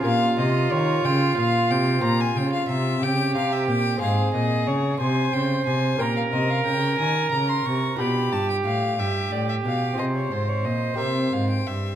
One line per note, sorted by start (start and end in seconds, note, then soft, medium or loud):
0.00 1.97 C#4 soft
0.00 3.01 F4 medium
0.00 1.97 G4 soft
0.00 1.98 A#4 soft
0.05 0.35 A#2 soft
0.05 0.38 A#2 medium
0.05 0.36 F5 medium
0.38 0.68 C3 soft
0.38 0.71 C3 medium
0.38 0.73 D#5 medium
0.72 1.04 D#3 medium
0.72 1.01 D#3 soft
0.72 1.07 C#5 medium
1.04 1.34 C#3 soft
1.04 1.37 C#3 medium
1.04 1.37 G5 medium
1.38 1.67 A#2 soft
1.38 1.72 A#2 medium
1.38 1.72 F5 medium
1.70 2.00 C3 soft
1.70 2.03 C3 medium
1.70 2.03 G5 medium
1.98 3.95 C4 soft
1.98 3.96 G4 soft
1.98 3.97 C5 soft
2.03 2.33 A#2 soft
2.03 2.35 A#2 medium
2.03 2.22 A#5 medium
2.20 2.38 G#5 medium
2.36 2.65 C#3 soft
2.36 2.69 C#3 soft
2.36 2.53 G5 medium
2.53 2.68 F5 medium
2.69 2.99 C3 soft
2.69 3.02 C3 medium
2.69 3.04 E5 medium
3.02 3.32 C#3 soft
3.02 3.37 C#3 medium
3.02 4.00 G4 medium
3.02 3.35 G5 medium
3.35 3.65 C3 soft
3.35 3.70 C3 medium
3.35 3.54 F5 medium
3.52 3.68 E5 medium
3.68 3.98 A#2 soft
3.68 4.02 A#2 medium
3.68 4.01 G5 medium
3.97 5.93 C4 soft
3.97 5.94 G#4 soft
3.97 5.95 C5 soft
4.01 4.31 G#2 soft
4.01 4.34 G#2 medium
4.01 4.99 G#4 medium
4.01 4.33 F5 medium
4.34 4.64 A#2 soft
4.34 4.69 A#2 soft
4.34 4.68 D#5 medium
4.67 4.97 C#3 soft
4.67 5.00 C#3 medium
4.67 4.99 C#5 medium
5.00 5.30 C3 soft
5.00 5.33 C3 medium
5.00 6.02 C5 medium
5.00 5.35 G#5 medium
5.33 5.66 C#3 soft
5.33 5.63 C#3 soft
5.33 5.66 G5 medium
5.66 5.97 C3 soft
5.66 5.99 C3 medium
5.66 6.01 G#5 medium
5.95 7.93 C#4 soft
5.95 7.93 G4 soft
5.95 7.94 A#4 soft
5.99 6.29 A#2 soft
5.99 6.32 A#2 medium
5.99 8.01 A#4 medium
5.99 6.16 G5 medium
6.16 6.23 F5 medium
6.33 6.65 C3 soft
6.33 6.63 C3 soft
6.33 6.51 D#5 medium
6.50 6.65 F5 medium
6.65 6.95 C#3 soft
6.65 6.99 C#3 medium
6.65 6.98 G5 medium
6.99 7.32 D#3 soft
6.99 7.29 D#3 soft
6.99 7.31 G#5 medium
7.32 7.62 C#3 soft
7.32 7.65 C#3 medium
7.32 7.51 A#5 medium
7.49 7.67 C6 medium
7.66 7.98 C3 medium
7.66 7.96 C3 soft
7.66 7.99 C#6 medium
7.95 9.92 D4 soft
7.95 9.93 F4 soft
7.95 9.94 G4 soft
7.95 8.99 G4 medium
7.95 8.34 B5 medium
7.99 8.34 B2 medium
7.99 8.29 B2 soft
8.32 8.65 G2 soft
8.32 8.62 G2 soft
8.32 8.49 A5 medium
8.50 8.56 G5 medium
8.65 8.95 A2 soft
8.65 9.01 A2 medium
8.65 9.00 F5 medium
8.99 9.29 G2 soft
8.99 9.32 G2 soft
8.99 10.00 G4 soft
8.99 9.33 E5 medium
9.32 9.64 A2 soft
9.32 9.62 A2 soft
9.32 9.48 D5 medium
9.49 9.55 E5 medium
9.65 9.95 B2 soft
9.65 9.97 B2 soft
9.65 9.97 F5 medium
9.93 10.93 C4 soft
9.93 10.94 F4 soft
9.93 10.95 G#4 soft
9.98 10.28 C3 soft
9.98 10.31 C3 soft
9.98 11.95 C5 medium
9.98 10.05 D#5 medium
10.16 10.33 C#5 medium
10.31 10.62 G#2 soft
10.31 10.67 G#2 soft
10.31 10.50 C5 medium
10.48 10.67 C#5 medium
10.65 10.95 A#2 soft
10.65 10.99 A#2 soft
10.65 10.98 D#5 medium
10.94 11.95 C4 soft
10.94 11.95 G4 soft
10.94 11.95 A#4 soft
10.98 11.29 C3 soft
10.98 11.32 C3 soft
10.98 11.35 E5 medium
11.33 11.63 G#2 soft
11.33 11.66 G#2 soft
11.33 11.50 F5 soft
11.50 11.68 G5 soft
11.67 11.95 G2 soft
11.67 11.95 E5 medium